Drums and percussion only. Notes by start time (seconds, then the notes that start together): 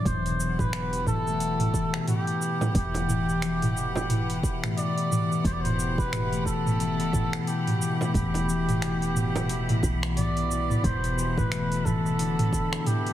0.06 kick, mid tom, open hi-hat, cabasa
0.26 open hi-hat, cabasa
0.40 cabasa
0.59 kick, mid tom, cabasa
0.73 finger snap, open hi-hat, cabasa
0.93 open hi-hat, cabasa
1.07 kick, mid tom, cabasa
1.27 cabasa
1.40 open hi-hat, cabasa
1.60 mid tom, open hi-hat
1.74 kick, cabasa
1.94 finger snap, cabasa
2.08 mid tom, open hi-hat, cabasa
2.27 open hi-hat
2.42 cabasa
2.61 mid tom, frame drum, cabasa
2.75 kick, open hi-hat, cabasa
2.94 open hi-hat, frame drum, cabasa
3.09 mid tom, cabasa
3.29 cabasa
3.42 finger snap, open hi-hat, cabasa
3.62 mid tom, open hi-hat, cabasa
3.77 cabasa
3.95 frame drum, cabasa
4.10 mid tom, open hi-hat, cabasa
4.30 open hi-hat
4.43 kick, cabasa
4.64 finger snap, mid tom, cabasa
4.78 open hi-hat, cabasa
4.98 open hi-hat
5.11 mid tom, cabasa
5.32 cabasa
5.45 kick, open hi-hat, cabasa
5.65 mid tom, open hi-hat, cabasa
5.80 cabasa
5.98 kick, cabasa
6.13 finger snap, mid tom, open hi-hat, cabasa
6.33 open hi-hat, cabasa
6.46 kick, cabasa
6.66 mid tom, cabasa
6.80 open hi-hat, cabasa
7.00 open hi-hat
7.13 kick, mid tom, cabasa
7.33 finger snap, cabasa
7.47 open hi-hat, cabasa
7.67 mid tom, open hi-hat
7.82 cabasa
8.01 frame drum, cabasa
8.14 kick, mid tom, open hi-hat, cabasa
8.34 open hi-hat, frame drum, cabasa
8.49 cabasa
8.69 mid tom, open hi-hat, cabasa
8.82 finger snap, open hi-hat, cabasa
9.02 open hi-hat, cabasa
9.16 mid tom, cabasa
9.35 open hi-hat, frame drum, cabasa
9.49 open hi-hat, cabasa
9.69 mid tom, open hi-hat
9.83 kick, cabasa
10.03 finger snap, cabasa
10.17 mid tom, open hi-hat, cabasa
10.37 open hi-hat
10.51 cabasa
10.70 mid tom, cabasa
10.84 kick, mid tom, open hi-hat, cabasa
11.04 open hi-hat, cabasa
11.19 cabasa
11.38 kick, mid tom, cabasa
11.52 finger snap, open hi-hat, cabasa
11.72 open hi-hat, cabasa
11.85 kick, mid tom, cabasa
12.06 cabasa
12.19 open hi-hat, cabasa
12.39 mid tom, open hi-hat
12.53 kick, cabasa
12.73 finger snap, cabasa
12.86 mid tom, open hi-hat, cabasa
13.06 open hi-hat